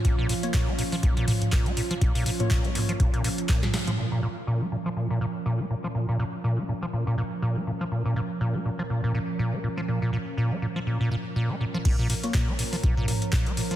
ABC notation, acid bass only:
X:1
M:4/4
L:1/16
Q:"Swing 16ths" 1/4=122
K:Bbm
V:1 name="Acid bass" clef=bass
B,, B,, B,, z B,, B, B,, F, B,, B,, B,, z B,, B, B,, F, | B,, B,, B,, z B,, B, B,, F, B,, B,, B,, z B,, B, B,, F, | B,, B,, B,, z B,, B, B,, F, B,, B,, B,, z B,, B, B,, F, | B,, B,, B,, z B,, B, B,, F, B,, B,, B,, z B,, B, B,, F, |
B,, B,, B,, z B,, B, B,, F, B,, B,, B,, z B,, B, B,, F, | B,, B,, B,, z B,, B, B,, F, B,, B,, B,, z B,, B, B,, F, | B,, B,, B,, z B,, B, B,, F, B,, B,, B,, z B,, B, B,, F, |]